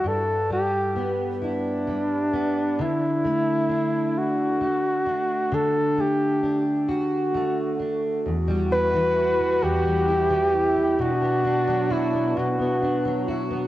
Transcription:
<<
  \new Staff \with { instrumentName = "Flugelhorn" } { \time 6/8 \key d \mixolydian \tempo 4. = 44 a'8 g'8 r8 d'4. | e'4. fis'4. | a'8 g'8 r8 fis'4 r8 | r8 b'4 g'4. |
fis'4 e'8 fis'4 r8 | }
  \new Staff \with { instrumentName = "French horn section" } { \time 6/8 \key d \mixolydian r2. | r2. | r2. | fis'2~ fis'8 e'8 |
d'2 r8 e'8 | }
  \new Staff \with { instrumentName = "Steel-string acoustic guitar" } { \time 6/8 \key d \mixolydian g,8 g8 b8 e'8 g8 b8 | d8 a8 d'4 a8 d'8 | d8 a8 d'8 fis'8 a8 d'8 | e,16 g16 e'16 e8 g16 e,16 g16 e'16 e8 g16 |
b,16 b16 d'16 fis16 fis'16 b16 b,16 b16 d'16 fis16 fis'16 b16 | }
>>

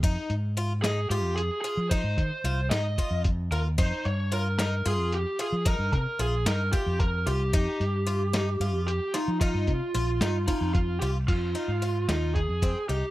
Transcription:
<<
  \new Staff \with { instrumentName = "Lead electric guitar" } { \time 7/8 \key f \minor \tempo 4 = 112 r4. aes'8 g'8 aes'8 aes'8 | c''4. ees''4 r8 bes'8 | c''8 des''8 bes'8 bes'8 aes'8 g'8 aes'8 | bes'8 bes'8 aes'8 bes'8 g'8 bes'8 g'8~ |
g'2~ g'8 g'8 ees'8 | f'2 ees'8 f'8 g'8 | f'4. f'8 aes'4 g'8 | }
  \new Staff \with { instrumentName = "Twelve-string acoustic guitar" } { \time 7/8 \key f \minor ees'4 f'8 ees'8 f'4 f'8 | ees'4 f'8 ees'8 f'4 f'8 | ees'4 f'8 ees'8 f'4 f'8 | ees'4 f'8 ees'8 f'4 f'8 |
ees'4 f'8 ees'8 f'4 f'8 | ees'4 f'8 ees'8 f'4 f'8 | r8 ees'8 f'8 ees'4 c'8 ees'8 | }
  \new Staff \with { instrumentName = "Fretless electric bass" } { \clef bass \time 7/8 \key f \minor f,16 r16 aes,4. aes,16 f,8 r8 f16~ | f16 aes,16 ees16 r16 c,8 aes,8 r16 f,8. ees,8 | f,16 r16 g,4. g,16 f,8 r8 f16~ | f16 g,16 c16 r16 bes,,8 g,8 r16 f,8. c,8 |
f,16 r16 g,4. g,16 f,8 r8 f16~ | f16 g,16 c16 r16 bes,,8 g,8 r16 f,8. c,8 | f,8 r16 aes,8. ees,8. f,8 r16 c,16 r16 | }
  \new DrumStaff \with { instrumentName = "Drums" } \drummode { \time 7/8 <hh bd>8 hh8 hh8 <hh sn>8 hh8 hh8 hh8 | <hh bd>8 <hh bd>8 <hh sn>8 <hh sn>8 <hh bd>8 <hh bd>8 hh8 | <hh bd>8 hh8 hh8 <hh sn>8 hh8 hh8 hh8 | <hh bd>8 <hh bd>8 hh8 <hh sn>8 <hh bd>8 <hh bd>8 hh8 |
<hh bd>8 <hh sn>8 hh8 <hh sn>8 <hh sn>8 hh8 <hh sn>8 | <hh bd>8 <hh bd>8 <hh sn>8 <hh sn>8 <hh bd>8 <hh bd>8 <hh sn>8 | <cymc hh bd>8 hh8 hh8 <hh sn>8 <hh bd>8 <hh bd sn>8 hh8 | }
>>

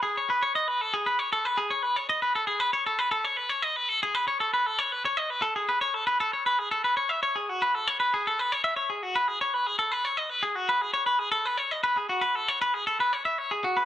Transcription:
\new Staff \with { instrumentName = "Clean electric guitar" } { \time 6/8 \key fis \dorian \tempo 4. = 78 gis'16 cis''16 b'16 cis''16 dis''16 b'16 a'16 gis'16 b'16 cis''16 a'16 b'16 | gis'16 cis''16 b'16 cis''16 dis''16 b'16 a'16 gis'16 b'16 cis''16 a'16 b'16 | a'16 cis''16 b'16 cis''16 dis''16 b'16 a'16 gis'16 b'16 cis''16 a'16 b'16 | a'16 cis''16 b'16 cis''16 dis''16 b'16 a'16 gis'16 b'16 cis''16 a'16 b'16 |
a'16 cis''16 b'16 gis'16 a'16 b'16 cis''16 e''16 cis''16 gis'16 fis'16 b'16 | a'16 cis''16 b'16 gis'16 a'16 b'16 cis''16 e''16 cis''16 gis'16 fis'16 b'16 | gis'16 cis''16 b'16 gis'16 a'16 b'16 cis''16 dis''16 b'16 gis'16 fis'16 b'16 | gis'16 cis''16 b'16 gis'16 a'16 b'16 cis''16 dis''16 b'16 gis'16 fis'16 b'16 |
a'16 cis''16 b'16 gis'16 a'16 b'16 cis''16 e''16 cis''16 gis'16 fis'16 b'16 | }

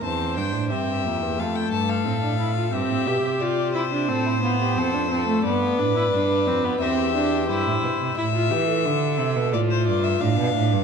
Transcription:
<<
  \new Staff \with { instrumentName = "Violin" } { \time 4/4 \key c \mixolydian \tempo 4 = 88 a''8 g''8 e''4 f''16 g''16 a''16 f''4~ f''16 | e''4 d''8 c''2~ c''8 | d''2 e''4 c''4 | \key a \minor e''2 d''16 c''16 d''16 e''16 f''4 | }
  \new Staff \with { instrumentName = "Violin" } { \time 4/4 \key c \mixolydian c''4 g'4 a'2 | g'4 g'4 a'16 e'16 f'16 g'16 a'8 a'8 | b'2 g'2 | \key a \minor r1 | }
  \new Staff \with { instrumentName = "Viola" } { \time 4/4 \key c \mixolydian c'8 d'8 c'8 bes8 a4 c'16 d'16 e'16 f'16 | c'8 g'8 f'8 e'16 d'16 c'8 b8 c'16 d'16 c'16 a16 | b8 d'16 e'16 d'8 c'16 b16 c'8 d'8 e'4 | \key a \minor e'16 f'16 g'16 a'4~ a'16 f'4 d'4 | }
  \new Staff \with { instrumentName = "Cello" } { \clef bass \time 4/4 \key c \mixolydian e,8 g,16 a,16 g,8 f,16 e,16 f,8 g,8 a,4 | g,16 a,16 b,16 c4~ c16 a,4 f,4 | g,8 a,8 g,8 f,8 e,4 g,16 a,16 b,16 c16 | \key a \minor a,8 e8 d8 c16 b,16 a,8 g,8 a,16 b,16 a,16 g,16 | }
>>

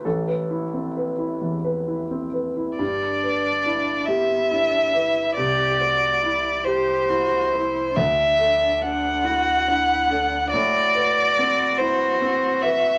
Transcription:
<<
  \new Staff \with { instrumentName = "Violin" } { \time 6/8 \key g \major \tempo 4. = 47 r2. | d''4. e''4. | d''4. c''4. | e''4 fis''2 |
d''4. c''4 e''8 | }
  \new Staff \with { instrumentName = "Cello" } { \time 6/8 \key g \major r2. | d'4. b8 d'8 e'8 | g'8 fis'8 e'8 g'8 fis'8 e'8 | d'4. fis'8 e'8 d'8 |
fis'2. | }
  \new Staff \with { instrumentName = "Grand piano" } { \time 6/8 \key g \major << { a'2~ a'8 r8 | r2. | r2. | r2. |
r2. | } \\ { a,,16 b'16 e'16 c'16 b'16 e'16 e,16 b'16 e'16 c'16 b'16 e'16 | g,8 b'8 e'8 g'8 e'8 b'8 | c,8 c''8 e'8 g'8 e'8 c''8 | d,8 a'8 d'8 e'8 d'8 a'8 |
a,8 b'8 c'8 e'8 c'8 b'8 | } >> }
  \new Staff \with { instrumentName = "Sub bass" } { \clef bass \time 6/8 \key g \major r2. | g,,2. | c,2. | d,2. |
a,,2. | }
>>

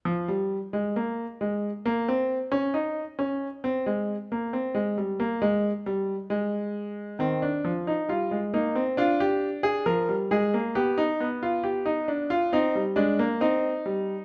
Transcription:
<<
  \new Staff \with { instrumentName = "Grand piano" } { \time 4/4 \key c \phrygian \tempo 4 = 67 f16 g8 aes16 bes8 aes8 bes16 c'8 des'16 ees'8 des'8 | c'16 aes8 bes16 c'16 aes16 g16 bes16 aes8 g8 aes4 | c'16 d'8 ees'16 f'8 ees'8 f'16 g'8 aes'16 bes'8 aes'8 | g'16 ees'8 f'16 g'16 ees'16 d'16 f'16 ees'8 d'8 ees'4 | }
  \new Staff \with { instrumentName = "Grand piano" } { \clef bass \time 4/4 \key c \phrygian r1 | r1 | ees8 f8 g16 aes16 bes16 c'16 d'4 f16 g16 aes16 bes16 | b8 b4. c'16 g16 aes16 bes16 c'8 g8 | }
>>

